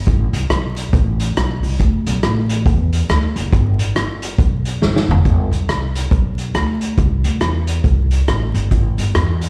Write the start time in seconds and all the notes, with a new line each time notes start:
0.07 A1, kick, closed hi-hat
0.33 C2, closed hi-hat
0.50 B1, cross-stick, closed hi-hat
0.76 closed hi-hat
0.93 A1, kick, closed hi-hat
1.20 closed hi-hat
1.37 B1, cross-stick, closed hi-hat
1.63 C2, open hi-hat
1.80 D2, kick, closed hi-hat
2.07 B1, closed hi-hat
2.23 A1, cross-stick, closed hi-hat
2.49 closed hi-hat
2.66 E2, kick, closed hi-hat
2.93 closed hi-hat
3.09 D2, cross-stick, closed hi-hat
3.36 F#1, closed hi-hat
3.53 G1, kick, closed hi-hat
3.78 A1, closed hi-hat
3.95 G1, cross-stick, closed hi-hat
4.22 closed hi-hat
4.38 B1, kick, closed hi-hat
4.65 closed hi-hat
4.81 G1, snare
4.96 snare
5.08 F#1, floor tom
5.25 G1, kick, closed hi-hat
5.51 B1, closed hi-hat
5.68 C2, cross-stick, closed hi-hat
5.95 closed hi-hat
6.11 B1, kick, closed hi-hat
6.38 closed hi-hat
6.54 D2, cross-stick, closed hi-hat
6.81 closed hi-hat
6.97 C2, kick, closed hi-hat
7.24 D2, closed hi-hat
7.41 E2, cross-stick, closed hi-hat
7.67 closed hi-hat
7.84 C2, kick, closed hi-hat
8.11 closed hi-hat
8.28 A1, cross-stick, closed hi-hat
8.54 G1, closed hi-hat
8.71 A1, kick, closed hi-hat
8.98 G1, closed hi-hat
9.15 E2, cross-stick, closed hi-hat
9.41 closed hi-hat